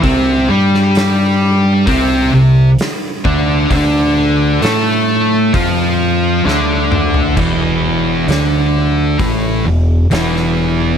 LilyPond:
<<
  \new Staff \with { instrumentName = "Distorted electric guitar" } { \time 4/4 \key c \major \tempo 4 = 66 <c c'>8 <g g'>4. <c c'>8 c8 r8 <d d'>8 | <d d'>4 <a a'>4 <f f'>4 <d d'>4 | r1 | }
  \new Staff \with { instrumentName = "Distorted electric guitar" } { \clef bass \time 4/4 \key c \major <c c'>8 <g g'>4. <c c'>8 c8 r8 <d d'>8 | <d d'>4 <a a'>4 <f f'>4 <d d'>4 | <e, e>4 <d d'>4 <a, a>8 e,8 <e, e>4 | }
  \new Staff \with { instrumentName = "Distorted electric guitar" } { \clef bass \time 4/4 \key c \major <c c'>8 <g g'>4. <c c'>8 c8 r8 <d d'>8 | <d d'>4 <a a'>4 <f f'>4 <d d'>4 | <e, e>4 <d d'>4 <a, a>8 e,8 <e, e>4 | }
  \new Staff \with { instrumentName = "Fingered electric bass" } { \clef bass \time 4/4 \key c \major c,8 g,4. c,8 c,8 r8 d,8 | d,4 a,4 f,4 d,4 | e,,4 d,4 a,,8 e,,8 e,,4 | }
  \new DrumStaff \with { instrumentName = "Drums" } \drummode { \time 4/4 <hho bd>8. sn16 <hho sn>4 <hho bd>4 <hho sn>8 bd8 | <hho bd>4 <hho sn>4 <hho bd>4 sn8 toml16 tomfh16 | <cymc bd>4 <hho sn>4 <hho bd>4 <hho sn>16 sn8. | }
>>